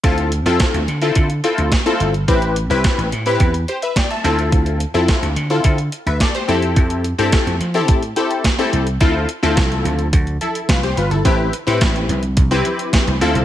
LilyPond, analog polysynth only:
\new Staff \with { instrumentName = "Analog polysynth" } { \time 4/4 \key d \dorian \tempo 4 = 107 << { r1 | r2 r8 <g' c''>16 <b' e''>16 <d'' g''>16 <e'' a''>8 r16 | r2 r8. <b' e''>16 <a' d''>16 <g' c''>8 r16 | r1 |
r2 r8 <e' a'>8 <f' b'>16 <g' c''>16 <f' b'>16 <e' a'>16~ | <e' a'>16 r2. r8. | } \\ { <c' e' f' a'>8 r16 <c' e' f' a'>8. r16 <c' e' f' a'>8 r16 <c' e' f' a'>8 r16 <c' e' f' a'>8 r16 | <c' e' g' b'>8 r16 <c' e' g' b'>8. r16 <c' e' g' b'>8 r4 r16 <c' e' f' a'>8~ | <c' e' f' a'>8 r16 <c' e' f' a'>8. r16 <c' e' f' a'>8 r4 r16 <c' e' g' a'>8~ | <c' e' g' a'>8 r16 <c' e' g' a'>8. r16 <c' e' g' a'>8 r16 <c' e' g' a'>8 r16 <c' e' g' a'>8 r16 |
<c' e' f' a'>8 r16 <c' e' f' a'>4~ <c' e' f' a'>16 r2 | <c' e' g' b'>8 r16 <c' e' g' b'>4 r8 <c' e' g' b'>4~ <c' e' g' b'>16 <c' e' f' a'>8 | } >> }